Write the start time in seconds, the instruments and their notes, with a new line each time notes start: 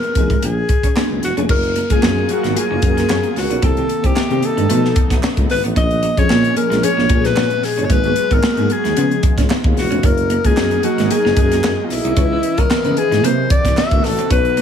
Already playing: fm electric piano F3 D#4 G#4, alto saxophone A#4
0.03 muted clean electric guitar stroke, closed hi-hat
0.15 tuba F1, fm electric piano F3 B3 D#4 G#4, kick, closed hi-hat
0.30 clean electric guitar G#3, kick, closed hi-hat
0.42 tuba A#1, clean electric guitar A#3, alto saxophone G#4, closed hi-hat
0.69 muted clean electric guitar stroke, kick, closed hi-hat
0.83 clean electric guitar C#4, kick, closed hi-hat
0.96 fm electric piano F#3 A#3 D4 G#4, clean electric guitar D4, snare, clap
1.10 tuba C#2
1.22 tuba E1, alto saxophone F#4, muted clean electric guitar stroke, snare, closed hi-hat
1.37 tuba F1, fm electric piano F#3 A#3 D4 G#4, clean electric guitar C#4, closed hi-hat
1.49 tuba F#1, analog synth pad F#3 F4 G#4 A#4, clean electric guitar C#4, alto saxophone A#4, kick, crash
1.63 closed hi-hat
1.76 clean electric guitar A#3, closed hi-hat
1.89 tuba C#2, fm electric piano F#3 A#3 F4 G#4, alto saxophone G#4, muted clean electric guitar stroke, kick, closed hi-hat
2.02 tuba F#2, clean electric guitar A#3, snare, clap
2.17 muted clean electric guitar stroke
2.29 fm electric piano F#3 A#3 F4 G#4, alto saxophone F#4, closed hi-hat
2.43 tuba G#1, clean electric guitar G#3, snare, closed hi-hat
2.55 fm electric piano F#3 A#3 F4 G#4, alto saxophone G#4, closed hi-hat
2.70 tuba F#1, clean electric guitar A#3
2.82 tuba F#2, fm electric piano F#3 A#3 F4 A#4, muted clean electric guitar stroke, kick, closed hi-hat
2.97 clean electric guitar A#3, snare, closed hi-hat
3.09 tuba F#2, clean electric guitar C#4, snare, clap
3.23 closed hi-hat
3.36 tuba C#2, alto saxophone F#4, muted clean electric guitar stroke, snare, open hi-hat
3.50 tuba B1, clean electric guitar C#4, closed hi-hat
3.62 tuba C2, analog synth pad C3 G3 A#3 D#4, fm electric piano D#3 A#3 C4 G4, clean electric guitar C4, alto saxophone A4, kick, closed hi-hat
3.76 fm electric piano D#3 A#3 C4 G4, closed hi-hat
3.89 muted clean electric guitar stroke, closed hi-hat
4.04 tuba C2, clean electric guitar C4, alto saxophone G4, kick, closed hi-hat
4.16 tuba C3, clean electric guitar A#3, snare, clap
4.30 tuba C3, fm electric piano D#3 A#3 C4 G4, muted clean electric guitar stroke, closed hi-hat
4.43 alto saxophone A4, closed hi-hat
4.57 tuba G2, clean electric guitar G#3, closed hi-hat
4.69 tuba B2, fm electric piano F3 B3 D#4 A4, clean electric guitar A3, analog synth pad A3 B3, closed hi-hat
4.85 snare
4.96 muted clean electric guitar stroke, kick, closed hi-hat
5.10 tuba B1, clean electric guitar B3, kick, snare, closed hi-hat
5.23 clean electric guitar C#4, snare, clap
5.37 tuba C#2, kick, closed hi-hat
5.50 tuba G#1, alto saxophone B4, muted clean electric guitar stroke, snare, open hi-hat
5.64 tuba A1, clean electric guitar B3, closed hi-hat
5.76 tuba A#1, analog synth pad A#2 G#3 C#4, clean electric guitar C#4, alto saxophone D#5, kick, closed hi-hat
5.91 closed hi-hat
6.03 clean electric guitar A#3, closed hi-hat
6.17 tuba F2, fm electric piano F3 A#3 C#4 G#4, alto saxophone C#5, muted clean electric guitar stroke, kick, closed hi-hat
6.29 tuba A#2, clean electric guitar A#3, snare, clap
6.44 muted clean electric guitar stroke, closed hi-hat
6.56 fm electric piano F3 A#3 C#4 G#4, alto saxophone A#4, closed hi-hat
6.70 tuba A#1, clean electric guitar G#3, snare, closed hi-hat
6.82 fm electric piano F3 A#3 C#4 G#4, alto saxophone C#5, closed hi-hat
6.97 tuba A#1, clean electric guitar A#3, snare
7.09 fm electric piano A#2 F3 C#4 G4, tuba A#2, muted clean electric guitar stroke, kick, closed hi-hat
7.16 fm electric piano G#4
7.24 clean electric guitar A#3, alto saxophone B4, snare, closed hi-hat
7.36 tuba A#2, clean electric guitar C#4, snare, clap
7.50 closed hi-hat
7.63 alto saxophone G#4, muted clean electric guitar stroke, snare, open hi-hat
7.78 tuba G1, clean electric guitar C#4, closed hi-hat
7.85 alto saxophone C#5
7.89 tuba G#1, fm electric piano F#3 A#3 B3 G#4, clean electric guitar G#3, analog synth pad F#4 G#4 A#5, alto saxophone B4, kick, closed hi-hat
8.04 fm electric piano F#3 A#3 B3 G#4, closed hi-hat
8.16 muted clean electric guitar stroke, closed hi-hat
8.31 tuba G#1, clean electric guitar B3, alto saxophone A#4, kick, closed hi-hat
8.43 tuba G#2, clean electric guitar A#3, snare, clap
8.57 tuba G#2, fm electric piano F#3 A#3 B3 G#4, muted clean electric guitar stroke, closed hi-hat
8.70 alto saxophone G#4, closed hi-hat
8.84 tuba D#2, clean electric guitar G#3, snare, closed hi-hat
8.96 tuba C#3, analog synth pad C#3 B3 F4, fm electric piano F3 B3 C#4 G#4, clean electric guitar B3, closed hi-hat
9.11 closed hi-hat
9.23 muted clean electric guitar stroke, kick, closed hi-hat
9.38 tuba C#2, clean electric guitar C#4, kick, snare, closed hi-hat
9.50 clean electric guitar D#4, snare, clap
9.64 tuba D#2, kick
9.77 tuba E1, alto saxophone F#4, muted clean electric guitar stroke, snare, open hi-hat
9.91 tuba F1, clean electric guitar C#4, closed hi-hat
10.03 tuba F#1, analog synth pad F#3 G#4 A#4 D#5, clean electric guitar C#4, alto saxophone A#4, kick, closed hi-hat
10.17 closed hi-hat
10.30 clean electric guitar A#3, closed hi-hat
10.44 tuba C#2, fm electric piano F#3 A#3 D#4 G#4, alto saxophone G#4, muted clean electric guitar stroke, kick, closed hi-hat
10.57 tuba F#2, clean electric guitar A#3, snare, clap
10.71 muted clean electric guitar stroke, closed hi-hat
10.83 fm electric piano F#3 A#3 D#4 G#4, alto saxophone F#4, closed hi-hat
10.98 tuba G#1, clean electric guitar G#3, snare, closed hi-hat
11.10 fm electric piano F#3 A#3 D#4 G#4, alto saxophone G#4, closed hi-hat
11.24 tuba F#1, clean electric guitar A#3, snare
11.36 tuba F#2, fm electric piano F#3 A#3 D#4 G#4, muted clean electric guitar stroke, kick, closed hi-hat
11.52 clean electric guitar A#3, snare, closed hi-hat
11.63 tuba F#2, clean electric guitar D#4, snare, clap
11.85 alto saxophone F4
11.90 tuba B1, alto saxophone E4, muted clean electric guitar stroke, snare, open hi-hat
12.04 tuba C2, clean electric guitar D#4, closed hi-hat
12.16 tuba C#2, analog synth pad C#3 E3 B3, fm electric piano E3 C#4 D#4 B4, clean electric guitar C#4, kick, closed hi-hat
12.31 fm electric piano E3 C#4 D#4 B4
12.43 muted clean electric guitar stroke, closed hi-hat
12.58 tuba C#2, clean electric guitar C#4, alto saxophone A#4, kick, closed hi-hat
12.70 tuba C#3, clean electric guitar A#3, snare, clap
12.84 tuba C#3, fm electric piano D#3 C#4 D#4 B4, muted clean electric guitar stroke, closed hi-hat
12.90 fm electric piano E3
12.97 alto saxophone G#4, closed hi-hat
13.11 tuba G#2, clean electric guitar G#3, snare, closed hi-hat
13.23 tuba C3, analog synth pad C3 F#3 F#4, fm electric piano F#3 C4 E4 A#4, clean electric guitar A#3, alto saxophone C5, closed hi-hat
13.50 alto saxophone D5, muted clean electric guitar stroke, kick, closed hi-hat
13.65 tuba C2, clean electric guitar C4, kick, snare, closed hi-hat
13.77 clean electric guitar C#4, alto saxophone E5, snare, clap
13.91 tuba D2, kick, closed hi-hat
14.04 tuba A1, alto saxophone A4, muted clean electric guitar stroke, snare, open hi-hat
14.19 clean electric guitar C4, closed hi-hat
14.30 tuba B1, analog synth pad B3 D#4, clean electric guitar C#4, alto saxophone B4, kick, closed hi-hat
14.45 closed hi-hat
14.57 clean electric guitar A#3, closed hi-hat